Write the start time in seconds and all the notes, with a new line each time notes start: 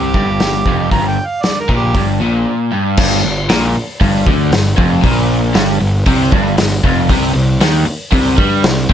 Already playing: C2 C3 G4
0.14 G1 G2, kick
0.40 snare, open hi-hat
0.66 F1 F2, kick
0.91 G1 G2 A#5, kick, open hi-hat
1.08 G5
1.27 F5
1.43 D5, snare, open hi-hat
1.60 A#4
1.69 A#1 A#2, kick
1.77 G4
1.94 G1 G2, kick, open hi-hat
2.20 A#1 A#2
2.72 G2
2.97 G1 G2, kick, crash
3.24 G1 G2
3.49 A#1 A#2, snare, open hi-hat
3.76 muted overdriven electric guitar stroke, muted picked electric bass stroke
4.01 G1 G2, kick, open hi-hat
4.27 D2 D3, kick
4.52 G1 G2, snare, open hi-hat
4.77 F1 F2, kick
5.02 A#1 A#2, kick, open hi-hat
5.54 G1 G2, snare, open hi-hat
5.80 G1 G2
6.06 C2 C3, kick, open hi-hat
6.32 G1 G2, kick
6.58 G1 G2, snare, open hi-hat
6.83 F1 F2, kick
7.09 C2 C3, kick, open hi-hat
7.34 C2 C3
7.60 D#2 D#3, snare, open hi-hat
7.86 muted overdriven electric guitar stroke, muted picked electric bass stroke
8.12 C2 C3, kick, open hi-hat
8.38 G2 G3, kick
8.64 C2 C3, snare, open hi-hat
8.89 A#1 A#2, kick